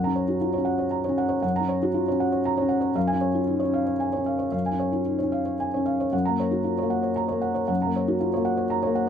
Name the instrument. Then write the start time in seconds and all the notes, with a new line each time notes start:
felt piano
Already playing: F#2 F#5
0.04 C#4 A#5
0.15 C#5
0.28 F#4
0.41 F4
0.53 C#5
0.58 C#4
0.65 F#5
0.79 C#5
0.91 A#5
1.04 C#5
1.09 C#4
1.18 F#5
1.29 C#5
1.42 F#2 F#5
1.56 A#5
1.60 C#4
1.69 C#5
1.83 F#4
1.94 F4
2.08 C#4 C#5
2.20 F#5
2.32 C#5
2.45 A#5
2.57 C#5
2.62 C#4
2.69 F#5
2.81 C#5
2.95 F#2 F5
3.07 G#5
3.13 C#4
3.21 C#5
3.35 F4
3.47 D#4
3.60 C#5
3.64 C#4
3.74 F5
3.86 C#5
4.00 G#5
4.13 C#4 C#5
4.26 F5
4.39 C#5
4.52 F#2 F5
4.66 G#5
4.71 C#4
4.79 C#5
4.92 F4
5.05 D#4
5.19 C#5
5.23 C#4
5.32 F5
5.45 C#5
5.60 G#5
5.74 C#4 C#5
5.86 F5
6.00 C#5
6.12 F#2 F#5
6.25 A#3 A#5
6.40 C#5
6.51 F#4
6.64 F4
6.78 C#5
6.83 A#3
6.90 F#5
7.03 C#5
7.16 A#5
7.28 A#3 C#5
7.41 F#5
7.54 C#5
7.68 F#2 F#5
7.82 A#5
7.86 A#3
7.96 C#5
8.08 F#4
8.20 F4
8.34 A#3 C#5
8.45 F#5
8.57 C#5
8.70 A#5
8.83 C#5
8.87 A#3
8.95 F#5